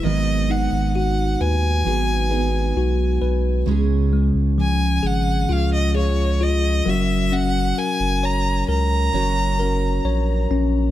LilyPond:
<<
  \new Staff \with { instrumentName = "Violin" } { \time 4/4 \key fis \mixolydian \tempo 4 = 66 dis''8 fis''8 fis''8 gis''2 r8 | r4 gis''8 fis''8 eis''16 dis''16 cis''8 dis''8 e''8 | fis''8 gis''8 ais''8 ais''2 r8 | }
  \new Staff \with { instrumentName = "Tine electric piano" } { \time 4/4 \key fis \mixolydian gis8 dis'8 fis'8 b'8 fis'8 b'8 fis'8 b'8 | cis8 gis8 eis8 gis'8 eis'8 gis'8 eis'8 fis8 | cis'8 ais'8 cis''8 ais'8 cis''8 ais'8 cis''8 cis'8 | }
  \new Staff \with { instrumentName = "Steel-string acoustic guitar" } { \time 4/4 \key fis \mixolydian <gis, dis fis b dis' gis'>2 <fis b dis' gis'>8 <fis b dis' gis'>4. | <cis gis cis' gis'>2 <gis cis' eis' gis'>8 <cis' eis' gis'>4 <fis cis' fis' ais'>8~ | <fis cis' fis' ais'>2 <fis cis' fis' ais'>8 <cis' fis' ais'>4. | }
  \new Staff \with { instrumentName = "Sub bass" } { \clef bass \time 4/4 \key fis \mixolydian gis,,8. gis,,8. dis,8 gis,,4 b,,8 b,,8 | cis,8. cis,8. gis,,8 cis,4. fis,,8~ | fis,,8 r16 fis,,8. cis,8 fis,,4 ais,,8 ais,,8 | }
>>